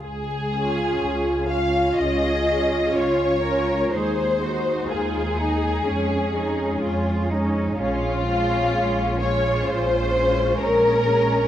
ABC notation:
X:1
M:4/4
L:1/8
Q:1/4=62
K:Db
V:1 name="Violin section"
A3 f e2 d2 | c2 A4- A z | F3 d c2 B2 |]
V:2 name="Violin section"
A3 f e2 d2 | c2 A4- A z | F3 d c2 B2 |]
V:3 name="Cello section"
z4 A2 F B | A G F E D E F E | D C D F3 D2 |]
V:4 name="Viola section"
z [DF]2 [DF]2 [DF]2 [DF] | [A,E] [A,E]2 [A,E] [A,D] [A,D]2 [A,D] | [A,D] [A,D]2 [A,D]2 [A,D]2 [A,D] |]
V:5 name="Double bass section" clef=bass
D,,2 D,,2 D,,2 D,,2 | E,,2 E,,2 F,,2 F,,2 | B,,,2 B,,,2 B,,,2 B,,,2 |]